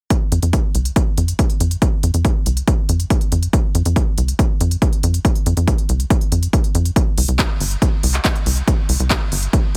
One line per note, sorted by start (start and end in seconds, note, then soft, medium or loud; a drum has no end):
0.10 kick loud
0.10 closed hi-hat medium
0.32 0.40 F2 medium
0.32 closed hi-hat medium
0.42 0.59 F2 loud
0.42 closed hi-hat soft
0.53 kick loud
0.53 closed hi-hat medium
0.75 0.91 C2 medium
0.75 closed hi-hat medium
0.85 closed hi-hat soft
0.96 kick loud
0.96 closed hi-hat medium
1.17 1.34 F2 loud
1.17 closed hi-hat medium
1.28 closed hi-hat soft
1.39 kick loud
1.39 closed hi-hat medium
1.50 closed hi-hat soft
1.60 1.76 F2 loud
1.60 closed hi-hat medium
1.71 closed hi-hat medium
1.82 kick loud
1.82 closed hi-hat medium
2.03 2.11 F2 loud
2.03 closed hi-hat medium
2.14 2.30 F2 medium
2.14 closed hi-hat soft
2.25 kick loud
2.25 closed hi-hat medium
2.46 2.62 C2 loud
2.46 closed hi-hat medium
2.57 closed hi-hat soft
2.68 kick loud
2.68 closed hi-hat medium
2.89 3.05 F2 loud
2.89 closed hi-hat medium
3.00 closed hi-hat soft
3.10 kick loud
3.10 closed hi-hat medium
3.21 closed hi-hat soft
3.32 3.48 F2 loud
3.32 closed hi-hat medium
3.43 closed hi-hat soft
3.53 kick loud
3.53 closed hi-hat medium
3.75 3.83 F2 loud
3.75 closed hi-hat medium
3.85 4.02 F2 loud
3.85 closed hi-hat soft
3.96 kick loud
3.96 closed hi-hat medium
4.18 4.34 C2 loud
4.18 closed hi-hat medium
4.28 closed hi-hat soft
4.39 kick loud
4.39 closed hi-hat medium
4.60 4.76 F2 loud
4.60 closed hi-hat medium
4.71 closed hi-hat soft
4.82 kick loud
4.82 closed hi-hat medium
4.93 closed hi-hat soft
5.03 5.19 F2 loud
5.03 closed hi-hat medium
5.14 closed hi-hat soft
5.25 kick loud
5.25 closed hi-hat medium
5.35 closed hi-hat soft
5.46 5.54 F2 loud
5.46 closed hi-hat medium
5.57 5.73 F2 loud
5.57 closed hi-hat soft
5.68 kick loud
5.68 closed hi-hat medium
5.78 closed hi-hat soft
5.89 6.05 C2 medium
5.89 closed hi-hat medium
6.00 closed hi-hat soft
6.10 kick loud
6.10 closed hi-hat medium
6.21 closed hi-hat soft
6.32 6.48 F2 medium
6.32 closed hi-hat medium
6.43 closed hi-hat soft
6.53 kick loud
6.53 closed hi-hat medium
6.64 closed hi-hat soft
6.75 6.91 F2 loud
6.75 closed hi-hat medium
6.85 closed hi-hat soft
6.96 kick loud
6.96 closed hi-hat medium
7.18 7.26 C2 loud
7.18 open hi-hat medium
7.28 7.44 C2 loud
7.28 closed hi-hat soft
7.39 kick loud
7.39 clap loud
7.39 closed hi-hat medium
7.60 7.76 G1 loud
7.60 open hi-hat medium
7.71 closed hi-hat soft
7.82 kick loud
7.82 closed hi-hat medium
8.03 8.19 C2 medium
8.03 open hi-hat loud
8.14 clap soft
8.14 closed hi-hat soft
8.25 kick loud
8.25 clap loud
8.25 closed hi-hat medium
8.35 closed hi-hat soft
8.46 8.62 C2 loud
8.46 open hi-hat medium
8.57 closed hi-hat soft
8.68 kick loud
8.68 closed hi-hat medium
8.89 8.97 C2 medium
8.89 open hi-hat medium
9.00 9.16 C2 medium
9.00 closed hi-hat soft
9.10 kick loud
9.10 clap loud
9.10 closed hi-hat medium
9.32 9.48 G1 medium
9.32 open hi-hat medium
9.43 closed hi-hat soft
9.53 kick loud
9.53 closed hi-hat medium